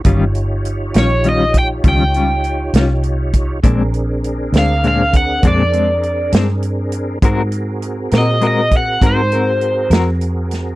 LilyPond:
<<
  \new Staff \with { instrumentName = "Overdriven electric guitar" } { \time 12/8 \key bes \dorian \tempo 4. = 67 r4. des''8 ees''8 g''8 g''2 r4 | r4. f''8 f''8 ges''8 d''4. r4. | r4. ees''8 ees''8 ges''8 c''4. r4. | }
  \new Staff \with { instrumentName = "Tonewheel organ" } { \time 12/8 \key bes \dorian <ees' f' g' des''>1. | <c' d' aes' bes'>1. | <c' ges' aes' bes'>1. | }
  \new Staff \with { instrumentName = "Clean electric guitar" } { \time 12/8 \key bes \dorian <ees g des' f'>8 r4 <g des' f'>8 <ees g des' f'>8 r8 <ees g des' f'>8 <g des' f'>8 r8 <g des' f'>8 r4 | <bes, aes c' d'>8 r4 <aes c' d'>8 <bes, aes c' d'>8 r8 <bes, aes c' d'>8 <aes c' d'>8 r8 <aes c' d'>8 r4 | <aes c' ges' bes'>8 r4 <c' ges' bes'>8 <aes c' ges' bes'>8 r8 <aes c' ges' bes'>8 <c' ges' bes'>8 r8 <c' ges' bes'>8 r4 | }
  \new Staff \with { instrumentName = "Fingered electric bass" } { \clef bass \time 12/8 \key bes \dorian g,,4. bes,,4. des,4. c,4. | bes,,4. d,4. f,4. g,4. | aes,4. bes,4. aes,4. f,4. | }
  \new DrumStaff \with { instrumentName = "Drums" } \drummode { \time 12/8 <hh bd>8 hh8 hh8 <hh sn>8 hh8 <hh bd>8 <hh bd>8 hh8 hh8 <hh sn>8 hh8 <hh bd>8 | <hh bd>8 hh8 hh8 <hh sn>8 hh8 <hh bd>8 <hh bd>8 hh8 hh8 <hh sn>8 hh8 hh8 | <hh bd>8 hh8 hh8 <hh sn>8 hh8 <hh bd>8 <hh bd>8 hh8 hh8 <hh sn>8 hh8 <hh sn>8 | }
>>